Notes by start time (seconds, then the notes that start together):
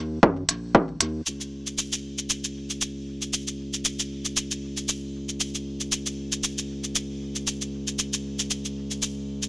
Already playing: D#2
0.23 F#2, kick
0.49 A#1, closed hi-hat
0.75 kick
1.01 D#2, closed hi-hat
1.26 C#2, cabasa
1.41 cabasa
1.67 cabasa
1.78 cabasa
1.93 cabasa
2.18 cabasa
2.30 cabasa
2.44 cabasa
2.70 cabasa
2.81 cabasa
3.22 cabasa
3.33 cabasa
3.48 cabasa
3.74 cabasa
3.85 cabasa
3.99 cabasa
4.25 cabasa
4.37 cabasa
4.51 cabasa
4.77 cabasa
4.89 cabasa
5.29 cabasa
5.40 cabasa
5.55 cabasa
5.81 cabasa
5.92 cabasa
6.06 cabasa
6.32 cabasa
6.44 cabasa
6.58 cabasa
6.84 cabasa
6.96 cabasa
7.36 cabasa
7.47 cabasa
7.62 cabasa
7.87 cabasa
7.99 cabasa
8.13 cabasa
8.39 cabasa
8.51 cabasa
8.65 cabasa
8.91 cabasa
9.02 cabasa
9.43 cabasa